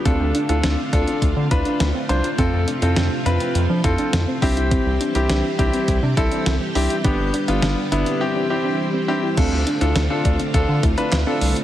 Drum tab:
CC |----------------|----------------|----------------|----------------|
HH |x-xxx-xxx-xxx-xx|x-xxx-xxx-xxx-ox|x-xxx-xxx-xxx-ox|x-xxx-xx--------|
CP |----------------|----------------|----------------|----------------|
SD |----o-------o---|----o-------o---|----o-------o---|----o-----------|
BD |o-----o-o-o-----|o---------o---o-|o-----o-o-o-----|o---------------|

CC |x---------------|
HH |x-xxx-xxx-xxx-ox|
CP |------------x---|
SD |----o-------o---|
BD |o-----o-o-o-----|